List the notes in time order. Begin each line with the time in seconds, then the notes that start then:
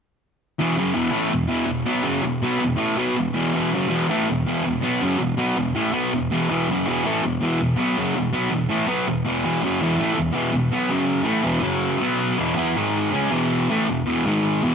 0.59 E2 B2 E3
0.77 F#2 C#3 F#3
0.94 E2 B2 E3
1.11 A2 E3 A3
1.29 E2 B2
1.48 E2 B2 E3
1.66 E2 B2
1.86 B2 F#3 B3
2.02 F#2 C#3 F#3
2.23 E2 B2
2.42 B2 F#3 B3
2.59 E2 B2
2.76 A2 E3 A3
2.97 B2 F#3 B3
3.17 E2 B2
3.34 E2 B2 E3
3.54 E2 B2 E3
3.73 F#2 C#3 F#3
3.88 E2 B2 E3
4.09 A2 E3 A3
4.29 E2 B2
4.46 E2 B2 E3
4.64 E2 B2
4.81 B2 F#3 B3
5.01 F#2 C#3 F#3
5.18 E2 B2
5.37 B2 F#3 B3
5.57 E2 B2
5.75 A2 E3 A3
5.92 B2 F#3 B3
6.12 E2 B2
6.32 E2 B2 E3
6.50 E2 B2 E3
6.70 F#2 C#3 F#3
6.86 E2 B2 E3
7.04 A2 E3 A3
7.22 E2 B2
7.41 E2 B2 E3
7.61 E2 B2
7.76 B2 F#3 B3
7.97 F#2 C#3 F#3
8.15 E2 B2
8.33 B2 F#3 B3
8.51 E2 B2
8.69 A2 E3 A3
8.87 B2 F#3 B3
9.08 E2 B2
9.25 E2 B2 E3
9.44 E2 B2 E3
9.62 F#2 C#3 F#3
9.80 E2 B2 E3
9.97 A2 E3 A3
10.15 E2 B2
10.32 E2 B2 E3
10.52 E2 B2
10.72 B2 F#3 B3
10.89 F#2 C#3 F#3
11.24 A2 E3 A3
11.43 E2 B2 E3
11.61 F#2 C#3 F#3
11.99 B2 F#3 B3
12.37 E2 B2 E3
12.55 E3 B3 E4
12.76 G#2 D#3 G#3
13.13 C#3 G#3 C#4
13.31 E2 B2 E3
13.70 A2 E3 A3
13.89 E2 B2
14.06 E2 B2 E3
14.26 G#2 D#3 G#3
14.63 E2 B2 E3